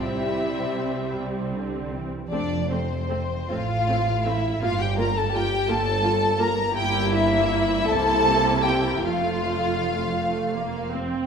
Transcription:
<<
  \new Staff \with { instrumentName = "Violin section" } { \time 6/8 \key f \major \tempo 4. = 53 e''4. r4. | d''8 c''4 f''4 e''8 | f''16 g''16 bes''16 a''16 g''8 a''4 bes''8 | g''8 e''4 a''4 g''8 |
f''2~ f''8 r8 | }
  \new Staff \with { instrumentName = "Violin section" } { \time 6/8 \key f \major e'4. r4. | d'8 c'4 f'4 e'8 | f'16 g'16 bes'16 a'16 g'8 a'4 bes'8 | g'8 e'4 a'4 g'8 |
f'2~ f'8 r8 | }
  \new Staff \with { instrumentName = "Viola section" } { \time 6/8 \key f \major <g c'>2~ <g c'>8 r8 | <a c'>8 <a c'>8 <a c'>8 <a c'>8 <a c'>8 <a c'>8 | <bes f'>8 <bes f'>8 <bes f'>8 <bes f'>8 <bes f'>8 <bes f'>8 | <bes e'>4. <bes e'>4. |
<a f'>4. a8 bes8 c'8 | }
  \new Staff \with { instrumentName = "Cello section" } { \clef bass \time 6/8 \key f \major c4. c8 d8 e8 | f,4. a,4. | g,4. g,4. | g,4. c4. |
f,2~ f,8 r8 | }
  \new Staff \with { instrumentName = "Double bass section" } { \clef bass \time 6/8 \key f \major c,2~ c,8 r8 | f,,4. a,,4. | g,,4. g,,4. | g,,4. c,4. |
f,,2~ f,,8 r8 | }
>>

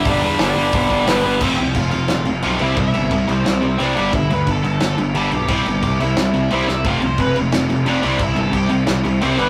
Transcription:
<<
  \new Staff \with { instrumentName = "Overdriven electric guitar" } { \time 4/4 \key c \lydian \tempo 4 = 177 <d' d''>4 <d' d''>2 <b b'>8 <b b'>8 | <c' c''>8 <g' g''>8 <f' f''>8 <f' f''>4 r8 <f' f''>8 <e' e''>8 | <e' e''>4. <c' c''>4. <d' d''>8 <d' d''>8 | <e' e''>8 <b' b''>8 <a' a''>8 <a' a''>4 r8 <a' a''>8 <g' g''>8 |
<g' g''>4. <e' e''>4. <e' e''>8 <e' e''>8 | <f' f''>8 <c'' c'''>8 <b' b''>8 r4. <d' d''>8 <d' d''>8 | <e' e''>8 <a' a''>8 <g' g''>8 r4. <c' c''>8 <b b'>8 | }
  \new Staff \with { instrumentName = "Distorted electric guitar" } { \clef bass \time 4/4 \key c \lydian <g, d g>8 <g, d g>8 <g, d g>8 <g, d g>8 <g, d g>8 <g, d g>8 <g, d g>8 <g, d g>8 | <f, c f>8 <f, c>8 <f, c>8 <f, c>8 <f, c>8 <f, c>8 <f, c f>8 <c g c'>8 | <c g>8 <c g>8 <c g>8 <c g>8 <c g>8 <c g>8 <c g c'>8 <g, d g>8 | <g, d>8 <g, d>8 <g, d>8 <g, d>8 <g, d>8 <g, d>8 <g, d g>8 <g, d>8 |
<c g c'>8 <c g>8 <c g>8 <c g>8 <c g>8 <c g>8 <c g c'>8 <c g>8 | <f, c f>8 <f, c>8 <f, c>8 <f, c>8 <f, c>8 <f, c>8 <f, c f>8 <c g c'>8 | <c g>8 <c g>8 <c g>8 <c g>8 <c g>8 <c g>8 <c g c'>8 <g, d g>8 | }
  \new Staff \with { instrumentName = "Distorted electric guitar" } { \clef bass \time 4/4 \key c \lydian <g, d g>8 <g, d g>8 <g, d g>8 <g, d g>8 <g, d g>8 <g, d g>8 <g, d g>8 <g, d g>8 | <f, c f>8 <f, c>8 <f, c>8 <f, c>8 <f, c>8 <f, c>8 <f, c f>8 <c g c'>8 | <c g>8 <c g>8 <c g>8 <c g>8 <c g>8 <c g>8 <c g c'>8 <g, d g>8 | <g, d>8 <g, d>8 <g, d>8 <g, d>8 <g, d>8 <g, d>8 <g, d g>8 <g, d>8 |
<c g c'>8 <c g>8 <c g>8 <c g>8 <c g>8 <c g>8 <c g c'>8 <c g>8 | <f, c f>8 <f, c>8 <f, c>8 <f, c>8 <f, c>8 <f, c>8 <f, c f>8 <c g c'>8 | <c g>8 <c g>8 <c g>8 <c g>8 <c g>8 <c g>8 <c g c'>8 <g, d g>8 | }
  \new Staff \with { instrumentName = "Picked electric bass" } { \clef bass \time 4/4 \key c \lydian g,,8 e,8 g,,8 g,,8 g,,8 g,,8 g,,8 g,,8 | f,,8 c,8 f,,8 f,,8 f,,8 f,,8 b,,8 c,8 | c,8 g,,8 c,8 c,8 c,8 c,8 c,8 g,,8 | g,,8 d,8 g,,8 g,,8 g,,8 g,,8 g,,8 b,,8 |
c,8 g,,8 c,8 c,8 c,8 c,8 c,8 c,8 | f,,8 c,8 f,,8 f,,8 f,,8 f,,8 f,,8 c,8 | c,8 g,,8 c,8 c,8 c,8 c,8 c,8 g,,8 | }
  \new DrumStaff \with { instrumentName = "Drums" } \drummode { \time 4/4 <hho bd>4 <hho sn>4 <hho bd>8 bd8 <hho sn>4 | <cymc bd>8 cymc8 <cymc bd>8 cymc8 <cymc sn>8 cymc8 cymc8 cymc8 | <cymc bd>8 cymc8 <cymc bd>8 cymc8 <cymc sn>8 cymc8 cymc8 cymc8 | <cymc bd>8 cymc8 <cymc bd>8 cymc8 <cymc sn>8 cymc8 cymc8 cymc8 |
<cymc bd>8 cymc8 <cymc bd>8 cymc8 <cymc sn>8 cymc8 cymc8 sn8 | <cymc bd>8 cymc8 <cymc bd>8 cymc8 <cymc sn>8 cymc8 cymc8 cymc8 | <cymc bd>8 cymc8 <cymc bd>8 cymc8 <cymc sn>8 cymc8 cymc8 cymc8 | }
>>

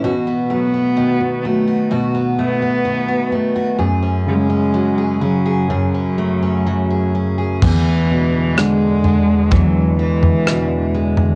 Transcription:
<<
  \new Staff \with { instrumentName = "Steel-string acoustic guitar" } { \time 4/4 \key e \mixolydian \tempo 4 = 64 <b, fis'>16 b16 a16 b16 dis16 fis'16 b16 fis'16 <b, fis'>16 b16 a16 b16 dis16 fis'16 b16 fis'16 | <fis, gis'>16 cis'8 cis'16 fis16 gis'16 cis'16 gis'16 <fis, gis'>16 cis'16 a16 cis'16 fis16 gis'16 cis'16 gis'16 | e,8 d'8 gis8 d'8 e8 e'8 d'8 gis8 | }
  \new Staff \with { instrumentName = "Cello" } { \clef bass \time 4/4 \key e \mixolydian r8 b4 a8 r8 b4 a8 | r8 gis4 fis8 fis4. r8 | e4 gis4 fis8 e4 r8 | }
  \new Staff \with { instrumentName = "Analog synth pad" } { \clef bass \time 4/4 \key e \mixolydian r1 | r1 | <e, d gis>1 | }
  \new Staff \with { instrumentName = "Grand piano" } { \clef bass \time 4/4 \key e \mixolydian b,8 fis8 b,8 fis8 b,2 | fis,8 cis8 fis8 cis8 fis,2 | e,8 b,8 d4 e,4 b,4 | }
  \new DrumStaff \with { instrumentName = "Drums" } \drummode { \time 4/4 r4 r4 r4 r4 | r4 r4 r4 r4 | <cymc bd tomfh>4 ss8 tomfh8 <bd tomfh>8. tomfh16 ss8. tomfh16 | }
>>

